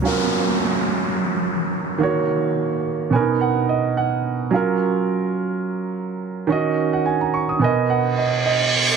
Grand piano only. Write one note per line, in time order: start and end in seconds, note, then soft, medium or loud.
0.02 1.96 F#3 medium
0.02 1.96 C#4 medium
0.02 1.97 F4 medium
0.07 1.98 A#4 medium
1.98 3.09 D#3 medium
1.98 3.10 A#3 medium
1.98 3.11 F#4 medium
2.03 3.12 C#5 medium
3.10 4.49 B2 medium
3.10 4.50 B3 medium
3.10 3.21 C#4 medium
3.10 3.39 G#5 medium
3.15 4.52 A#4 medium
3.20 4.54 D#4 medium
3.41 3.67 F#5 medium
3.69 3.95 D#5 medium
3.97 4.49 F#5 medium
4.51 6.44 F#3 medium
4.51 6.45 C#4 medium
4.51 6.46 F4 medium
4.56 6.47 A#4 medium
6.47 7.58 D#3 medium
6.47 7.59 C#4 medium
6.47 7.60 F#4 medium
6.52 7.61 D#5 medium
6.93 7.05 F#5 medium
7.06 7.20 G#5 medium
7.21 7.33 A#5 medium
7.34 7.48 C#6 medium
7.49 7.76 D#6 medium
7.59 8.97 B2 medium
7.59 8.97 B3 medium
7.59 8.97 A#4 medium
7.59 7.88 G#5 medium
7.64 8.16 D#5 medium
7.90 8.16 F#5 medium
8.18 8.44 D#5 medium
8.46 8.97 D#5 medium